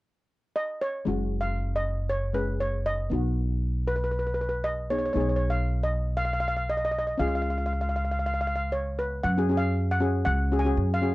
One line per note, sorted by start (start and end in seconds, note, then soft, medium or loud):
0.56 0.82 D#5 medium
0.81 1.43 C#5 medium
1.05 3.07 F#1 medium
1.05 2.31 G#3 medium
1.05 2.32 C#4 medium
1.05 2.33 F#4 medium
1.41 1.76 F5 medium
1.76 2.10 D#5 medium
2.09 2.36 C#5 medium
2.33 3.11 G#3 soft
2.33 3.11 C#4 soft
2.33 3.11 G#4 soft
2.33 2.61 B4 medium
2.60 2.87 C#5 medium
2.86 3.91 D#5 medium
3.10 5.12 B1 medium
3.10 4.86 B3 medium
3.10 4.87 D#4 soft
3.10 4.87 F#4 medium
3.87 3.95 B4 medium
3.96 4.03 B4 medium
4.04 4.10 B4 medium
4.11 4.18 B4 soft
4.19 4.26 B4 medium
4.27 4.33 B4 soft
4.34 4.40 B4 medium
4.41 4.48 B4 soft
4.49 4.57 B4 medium
4.64 4.91 D#5 medium
4.90 5.13 B3 soft
4.90 5.14 D#4 soft
4.90 5.16 G#4 soft
4.90 4.97 C#5 medium
4.99 5.04 C#5 medium
5.06 5.12 C#5 medium
5.13 7.16 B1 medium
5.13 7.15 B3 soft
5.13 7.16 D#4 soft
5.13 7.16 G#4 medium
5.13 5.19 C#5 medium
5.20 5.28 C#5 medium
5.29 5.35 C#5 soft
5.36 5.43 C#5 medium
5.50 5.82 F5 medium
5.83 6.19 D#5 medium
6.17 6.24 F5 medium
6.25 6.32 F5 medium
6.33 6.39 F5 medium
6.40 6.47 F5 medium
6.48 6.56 F5 medium
6.57 6.64 F5 medium
6.70 6.76 D#5 medium
6.77 6.83 D#5 medium
6.85 6.90 D#5 medium
6.91 6.97 D#5 medium
6.99 7.06 D#5 medium
7.07 7.14 D#5 medium
7.18 9.20 C#2 medium
7.18 9.19 C#4 medium
7.18 9.20 F4 soft
7.18 9.20 G#4 medium
7.18 7.27 F5 medium
7.28 7.34 F5 medium
7.35 7.41 F5 medium
7.42 7.49 F5 soft
7.50 7.57 F5 medium
7.58 7.65 F5 soft
7.66 7.72 F5 medium
7.73 7.80 F5 soft
7.81 7.88 F5 soft
7.89 7.95 F5 soft
7.96 8.03 F5 medium
8.05 8.10 F5 soft
8.12 8.18 F5 medium
8.19 8.25 F5 medium
8.26 8.33 F5 medium
8.34 8.40 F5 medium
8.41 8.46 F5 medium
8.47 8.54 F5 medium
8.56 8.63 F5 medium
8.72 8.99 C#5 medium
8.99 9.25 B4 medium
9.24 10.22 F#2 medium
9.24 9.59 F#5 medium
9.37 9.45 C#4 medium
9.37 9.45 F#4 medium
9.37 9.45 G#4 medium
9.49 9.80 C#4 medium
9.49 9.81 F#4 soft
9.49 9.81 G#4 medium
9.57 9.93 F5 medium
9.91 10.24 F#5 medium
10.00 10.31 C#4 medium
10.00 10.31 F#4 medium
10.00 10.32 G#4 medium
10.25 10.73 C#2 medium
10.25 10.61 F#5 medium
10.52 10.60 C#4 medium
10.52 10.60 F#4 medium
10.52 10.60 G#4 medium
10.59 10.91 G#5 medium
10.65 10.88 C#4 medium
10.65 10.88 F#4 medium
10.65 10.88 G#4 medium
10.77 11.15 F#2 medium
10.94 11.15 F5 medium
11.02 11.15 C#4 medium
11.02 11.15 F#4 medium
11.02 11.15 G#4 medium